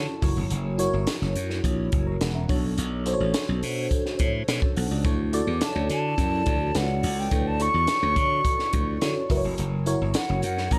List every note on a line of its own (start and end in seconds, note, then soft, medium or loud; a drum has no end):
0.00 0.22 E4 medium
0.00 0.24 F4 medium
0.00 0.22 F#4 medium
0.00 0.24 A4 medium
0.00 0.23 C#5 loud
0.00 0.23 A5 loud
0.22 0.34 F#1 medium
0.22 0.68 E4 medium
0.22 0.68 F#4 medium
0.22 0.69 A#4 medium
0.22 0.69 C#5 loud
0.22 kick medium
0.22 open hi-hat medium
0.22 tambourine soft
0.36 0.48 F1 medium
0.50 0.87 F#1 loud
0.50 closed hi-hat medium
0.50 tambourine soft
0.78 1.71 E4 loud
0.78 1.71 F#4 medium
0.78 1.71 A#4 medium
0.78 1.72 C#5 loud
0.78 closed hi-hat medium
0.78 tambourine soft
0.93 1.05 G1 medium
1.07 snare loud
1.07 closed hi-hat medium
1.07 tambourine medium
1.22 1.34 F#1 medium
1.22 snare soft
1.36 1.60 F#2 medium
1.36 closed hi-hat medium
1.36 tambourine soft
1.50 snare soft
1.64 1.88 A#1 medium
1.64 kick medium
1.64 closed hi-hat medium
1.64 tambourine soft
1.92 2.17 F#1 medium
1.92 kick loud
1.92 closed hi-hat medium
2.06 2.20 C#5 soft
2.06 2.20 A#5 medium
2.21 2.45 E1 medium
2.21 2.35 A#4 medium
2.21 2.34 F#5 medium
2.21 snare loud
2.21 closed hi-hat medium
2.21 tambourine medium
2.35 2.62 E5 medium
2.48 2.73 B1 medium
2.48 2.95 D4 medium
2.48 2.95 F#4 medium
2.48 2.95 A4 medium
2.48 2.96 C#5 loud
2.48 kick loud
2.48 open hi-hat medium
2.48 tambourine soft
2.78 3.14 B1 medium
2.78 closed hi-hat medium
2.78 tambourine soft
3.06 3.98 D4 loud
3.06 3.98 F#4 medium
3.06 3.99 A4 medium
3.06 3.13 C5 medium
3.06 closed hi-hat medium
3.06 tambourine soft
3.13 4.02 C#5 loud
3.20 3.32 A1 medium
3.34 snare loud
3.34 closed hi-hat medium
3.34 tambourine medium
3.49 3.61 B1 medium
3.63 3.87 B2 medium
3.63 open hi-hat medium
3.63 tambourine soft
3.91 kick medium
3.91 closed hi-hat medium
3.91 tambourine soft
4.06 snare soft
4.19 4.44 A2 medium
4.19 kick medium
4.19 closed hi-hat medium
4.19 tambourine soft
4.48 4.60 B2 medium
4.48 snare loud
4.48 closed hi-hat medium
4.48 tambourine medium
4.62 4.76 C#5 medium
4.62 4.76 A5 medium
4.62 kick medium
4.76 4.89 B1 medium
4.76 4.90 A4 medium
4.76 4.90 F#5 medium
4.76 open hi-hat medium
4.76 tambourine soft
4.91 5.03 C#2 medium
4.91 5.04 F#4 soft
4.91 5.18 D5 medium
5.04 5.41 D2 loud
5.04 5.28 E4 medium
5.04 5.28 F#4 medium
5.04 5.28 A4 medium
5.04 5.28 C#5 medium
5.04 kick loud
5.04 closed hi-hat medium
5.04 tambourine soft
5.33 6.25 E4 loud
5.33 6.25 F#4 medium
5.33 6.26 A4 medium
5.33 6.26 D5 loud
5.33 closed hi-hat medium
5.33 tambourine soft
5.47 5.59 E2 medium
5.61 5.89 A5 medium
5.61 snare loud
5.61 closed hi-hat medium
5.61 tambourine medium
5.75 5.87 D2 medium
5.90 6.14 D3 medium
5.90 6.78 A5 medium
5.90 closed hi-hat medium
5.90 tambourine soft
6.18 6.42 F#2 medium
6.18 kick medium
6.18 closed hi-hat medium
6.18 tambourine soft
6.46 6.71 D2 medium
6.46 kick loud
6.46 closed hi-hat medium
6.46 tambourine soft
6.74 6.99 C#2 medium
6.74 7.21 E4 medium
6.74 6.81 F4 soft
6.74 7.21 A4 medium
6.74 7.21 B4 medium
6.74 7.21 F#5 medium
6.74 snare loud
6.74 closed hi-hat medium
6.74 tambourine medium
6.81 7.24 F#4 medium
7.03 7.27 C#2 medium
7.03 open hi-hat medium
7.03 tambourine soft
7.20 7.49 G5 medium
7.31 7.67 D2 medium
7.31 7.54 E4 medium
7.31 7.55 F#4 medium
7.31 7.55 A4 medium
7.31 7.55 C#5 medium
7.31 kick loud
7.31 closed hi-hat medium
7.31 tambourine soft
7.47 7.63 A5 medium
7.60 8.52 E4 medium
7.60 8.52 F#4 medium
7.60 8.52 A4 medium
7.60 8.53 C#5 medium
7.60 9.31 C#6 loud
7.60 closed hi-hat medium
7.60 tambourine soft
7.74 7.86 E2 medium
7.87 snare loud
7.87 closed hi-hat medium
7.87 tambourine medium
8.03 8.14 D2 loud
8.16 8.40 D3 medium
8.16 kick medium
8.16 closed hi-hat medium
8.16 tambourine soft
8.45 kick medium
8.45 closed hi-hat medium
8.45 tambourine soft
8.59 snare soft
8.73 8.97 D2 medium
8.73 kick loud
8.73 closed hi-hat medium
8.73 tambourine soft
9.01 9.13 D3 loud
9.01 9.28 E4 medium
9.01 9.29 F#4 medium
9.01 9.30 A4 medium
9.01 9.30 C#5 medium
9.01 snare loud
9.01 closed hi-hat medium
9.01 tambourine medium
9.29 9.42 F#1 medium
9.29 9.76 E4 medium
9.29 9.76 F#4 medium
9.29 9.76 A#4 medium
9.29 9.37 B4 medium
9.29 kick medium
9.29 open hi-hat medium
9.29 tambourine soft
9.37 9.80 C#5 loud
9.44 9.56 F1 medium
9.57 9.94 F#1 medium
9.57 closed hi-hat medium
9.57 tambourine soft
9.86 10.79 E4 loud
9.86 10.79 F#4 loud
9.86 10.79 A#4 loud
9.86 10.79 C#5 loud
9.86 closed hi-hat medium
9.86 tambourine soft
10.01 10.13 G1 medium
10.14 10.42 F#5 medium
10.14 snare loud
10.14 closed hi-hat medium
10.14 tambourine medium
10.29 10.41 F#1 medium
10.42 10.67 F#2 medium
10.42 10.74 F#5 medium
10.42 closed hi-hat medium
10.42 tambourine soft
10.58 snare soft
10.71 10.79 A#1 medium
10.71 10.79 A#5 loud
10.71 kick medium
10.71 closed hi-hat medium
10.71 tambourine soft